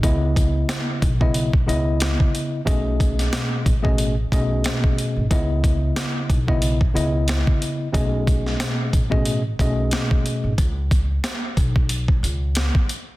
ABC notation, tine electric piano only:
X:1
M:4/4
L:1/16
Q:"Swing 16ths" 1/4=91
K:Bmix
V:1 name="Tine electric piano"
[C,B,Ed]6 z [C,B,Ed]2 z [C,B,Ed]6 | [B,,A,CGd]6 z [B,,A,CGd]2 z [B,,A,CGd]6 | [C,B,Ed]6 z [C,B,Ed]2 z [C,B,Ed]6 | [B,,A,CGd]6 z [B,,A,CGd]2 z [B,,A,CGd]6 |
z16 |]